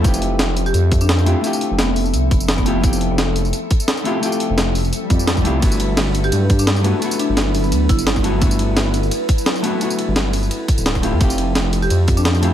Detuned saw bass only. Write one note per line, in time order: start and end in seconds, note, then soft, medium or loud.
0.05 0.73 F1 loud
0.74 1.34 F2 medium
1.71 2.15 F1 medium
2.14 2.30 C2 medium
2.31 3.09 F1 medium
3.11 3.52 F1 medium
4.50 4.92 F1 medium
5.10 5.47 F2 loud
5.45 5.61 C2 medium
5.63 6.31 G1 loud
6.33 6.93 G2 medium
7.29 7.73 G1 medium
7.72 7.88 D2 loud
7.89 8.67 G1 loud
8.68 9.10 G1 medium
10.08 10.50 G1 medium
10.78 11.14 D1 loud
11.13 11.20 F2 medium
11.21 11.89 F1 loud
11.91 12.51 F2 medium